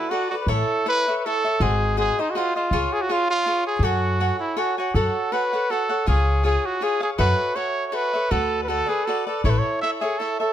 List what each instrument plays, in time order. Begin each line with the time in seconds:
Already playing: trumpet E4, cavaquinho D5
0.10 trumpet F#4, cavaquinho F#4 A4 B4 D5
0.30 trumpet F#4, cavaquinho A4 B4 D5
0.41 trumpet B4
0.47 upright bass A1, cavaquinho E4 A4 C#5 E5, trumpet A4
0.86 cavaquinho E4 A4 C#5 E5, trumpet B4
1.08 cavaquinho A4 C#5 E5
1.18 trumpet B4
1.26 cavaquinho E4 A4 C#5 E5, trumpet A4
1.44 cavaquinho A4 C#5 E5
1.60 upright bass G#1, cavaquinho F#4 G#4 C5 D#5, trumpet G#4
1.97 cavaquinho F#4 G#4 C5 D#5, trumpet G#4
2.19 trumpet D#4, cavaquinho G#4 C5 D#5
2.30 trumpet F#4
2.35 trumpet F4, cavaquinho F#4 G#4 C5 D#5
2.56 trumpet F4, cavaquinho G#4 C5 D#5
2.71 upright bass C#2, cavaquinho F4 G#4 C#5 F5
2.93 trumpet G#4
3.02 trumpet F#4
3.09 cavaquinho F4 G#4 C#5 F5, trumpet F4
3.30 trumpet F4
3.46 cavaquinho F4 G#4 C#5 F5
3.67 trumpet G#4
3.79 upright bass F#2, cavaquinho A4
3.84 trumpet F#4, cavaquinho C#5 F#5 G#5
4.20 cavaquinho A4 C#5 F#5 G#5
4.40 trumpet E4
4.57 trumpet F#4, cavaquinho A4 C#5 F#5 G#5
4.78 trumpet F#4, cavaquinho C#5 F#5 G#5
4.94 upright bass F#2, cavaquinho F#4 A4 C#5 F#5, trumpet A4
5.32 cavaquinho F#4 A4 C#5 F#5, trumpet B4
5.53 cavaquinho A4 C#5 F#5
5.70 cavaquinho F#4 A4 C#5 F#5, trumpet A4
5.89 cavaquinho A4 C#5 F#5
6.06 upright bass C#2, cavaquinho F4 G#4 C#5 F5, trumpet G#4
6.43 cavaquinho F4 G#4 C#5 F5, trumpet G#4
6.66 trumpet F#4
6.81 cavaquinho F4 G#4 C#5 F5, trumpet G#4
7.00 cavaquinho G#4 C#5 F5, trumpet G#4
7.18 upright bass F#2, cavaquinho F#4 A4 C#5 E5, trumpet B4
7.55 cavaquinho F#4 A4 C#5 E5, trumpet C#5
7.87 trumpet C#5
7.92 cavaquinho F#4 A4 C#5 E5, trumpet B4
8.13 cavaquinho A4 C#5 E5
8.31 upright bass D2, cavaquinho F#4 A4 B4 D5, trumpet A4
8.64 trumpet B4
8.68 cavaquinho F#4 A4 B4 D5, trumpet A4
8.86 trumpet G#4, cavaquinho A4 B4 D5
9.05 cavaquinho F#4 A4 B4 D5, trumpet A4
9.27 trumpet A4, cavaquinho A4 B4 D5
9.44 upright bass A1, cavaquinho E4 A4 C#5 E5, trumpet C#5
9.50 trumpet B4
9.59 trumpet C#5
9.82 cavaquinho E4 A4 C#5 E5, trumpet E5
10.01 trumpet G#4, cavaquinho A4 C#5 E5
10.18 cavaquinho E4 A4 C#5 E5, trumpet A4
10.40 trumpet A4, cavaquinho A4 C#5 E5